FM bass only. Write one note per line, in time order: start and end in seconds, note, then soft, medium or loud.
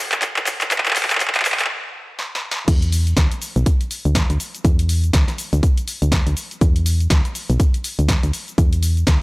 2.68 3.14 E2 loud
3.17 3.29 D2 medium
3.56 3.65 B1 loud
4.05 4.25 D2 loud
4.30 4.38 D2 medium
4.65 5.11 E2 loud
5.14 5.26 D2 medium
5.53 5.61 D2 loud
6.02 6.22 D2 loud
6.27 6.35 D2 medium
6.61 7.08 E2 loud
7.11 7.23 D2 medium
7.50 7.58 B1 loud
7.99 8.19 D2 loud
8.23 8.32 D2 medium
8.58 9.05 E2 loud
9.07 9.19 D2 medium